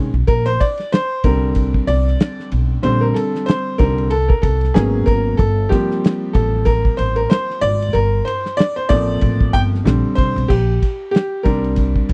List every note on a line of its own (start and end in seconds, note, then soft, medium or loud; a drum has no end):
0.00 0.11 C2 medium
0.14 0.25 B1 medium
0.27 0.54 A#1 medium
0.27 0.47 A#4 medium
0.27 kick loud
0.27 ride soft
0.46 0.60 C5 loud
0.60 0.93 D5 medium
0.60 kick medium
0.60 ride medium
0.77 snare soft
0.77 ride soft
0.92 1.22 C5 loud
0.92 snare loud
0.92 hi-hat pedal soft
0.92 ride medium
1.24 1.75 C2 medium
1.24 2.81 D3 soft
1.24 2.81 G3 soft
1.24 2.82 C4 medium
1.24 1.90 A#4 medium
1.24 kick loud
1.24 ride medium
1.55 kick medium
1.55 ride medium
1.74 kick medium
1.87 2.13 C2 medium
1.87 2.47 D5 medium
1.87 ride medium
2.08 snare soft
2.20 snare loud
2.20 hi-hat pedal soft
2.20 ride medium
2.40 snare soft
2.52 2.78 B1 medium
2.52 ride medium
2.82 3.09 A#1 medium
2.82 3.75 D3 medium
2.82 3.75 G3 medium
2.82 3.75 C4 medium
2.82 3.02 C5 medium
2.82 ride soft
3.01 3.15 A#4 medium
3.14 3.48 A4 medium
3.14 snare soft
3.14 ride medium
3.35 snare soft
3.46 3.80 C5 medium
3.46 snare loud
3.46 hi-hat pedal soft
3.46 ride medium
3.78 4.31 C2 loud
3.78 4.07 D3 soft
3.78 4.08 G3 soft
3.78 4.08 C4 medium
3.78 4.12 A#4 medium
3.78 kick loud
3.78 ride medium
3.98 ride soft
4.10 4.30 A4 medium
4.10 ride medium
4.28 4.43 A#4 medium
4.28 kick medium
4.42 4.69 C2 loud
4.42 4.75 A4 medium
4.42 kick medium
4.42 ride medium
4.61 snare soft
4.61 ride soft
4.74 5.01 G#1 medium
4.74 5.35 F#3 medium
4.74 5.35 A#3 medium
4.74 5.36 B3 medium
4.74 5.36 C#4 medium
4.74 5.04 G#4 medium
4.74 snare loud
4.74 hi-hat pedal medium
4.74 ride medium
5.06 5.33 G#1 medium
5.06 5.39 A#4 medium
5.06 kick medium
5.06 ride medium
5.37 5.65 G1 loud
5.37 5.68 A4 medium
5.37 kick loud
5.37 ride medium
5.69 8.22 F3 medium
5.69 8.22 G3 medium
5.69 8.22 A#3 medium
5.69 8.22 C4 medium
5.69 6.36 G4 medium
5.69 kick medium
5.69 snare soft
5.69 ride medium
5.91 snare soft
6.04 snare loud
6.04 hi-hat pedal soft
6.04 ride medium
6.33 6.86 A1 loud
6.33 6.67 A4 medium
6.33 kick loud
6.33 ride medium
6.65 6.99 A#4 medium
6.65 kick medium
6.65 ride medium
6.85 kick medium
6.97 7.24 A1 medium
6.97 7.17 C5 medium
6.97 ride medium
7.16 7.30 A#4 medium
7.16 ride soft
7.30 7.63 C5 medium
7.30 snare loud
7.30 hi-hat pedal soft
7.30 ride medium
7.51 snare soft
7.61 7.88 G#1 medium
7.61 7.95 D5 loud
7.61 ride medium
7.82 ride medium
7.93 8.20 G1 medium
7.93 8.27 A#4 loud
7.93 ride soft
8.25 8.58 C5 medium
8.25 ride medium
8.46 snare soft
8.57 8.74 D5 loud
8.57 snare loud
8.57 hi-hat pedal soft
8.57 ride medium
8.76 8.90 C5 medium
8.89 9.16 A1 medium
8.89 9.81 F3 medium
8.89 9.81 A3 medium
8.89 9.82 A#3 medium
8.89 9.82 C4 medium
8.89 9.55 D5 loud
8.89 kick medium
8.89 ride medium
9.21 9.48 A1 loud
9.21 kick medium
9.21 ride medium
9.41 kick loud
9.53 9.79 G1 medium
9.53 9.61 G5 loud
9.53 kick loud
9.53 ride medium
9.75 snare soft
9.84 10.00 A#1 medium
9.84 10.46 D3 medium
9.84 10.46 G3 medium
9.84 10.46 C4 medium
9.84 snare loud
9.84 hi-hat pedal soft
9.84 ride medium
10.15 10.32 C2 medium
10.15 10.49 C5 medium
10.15 kick medium
10.15 ride medium
10.36 10.47 B1 medium
10.36 ride soft
10.48 10.75 A#1 loud
10.48 11.10 G4 medium
10.48 kick loud
10.48 crash medium
10.82 kick medium
10.82 ride medium
11.11 11.45 G4 medium
11.11 hi-hat pedal soft
11.11 ride medium
11.16 snare loud
11.43 11.97 C2 medium
11.43 12.13 G3 medium
11.43 12.13 C4 soft
11.43 12.13 D4 medium
11.43 12.13 A#4 medium
11.43 kick medium
11.43 ride medium
11.64 ride soft
11.76 kick medium
11.76 ride medium
11.96 kick medium
12.09 12.13 C2 medium
12.09 ride medium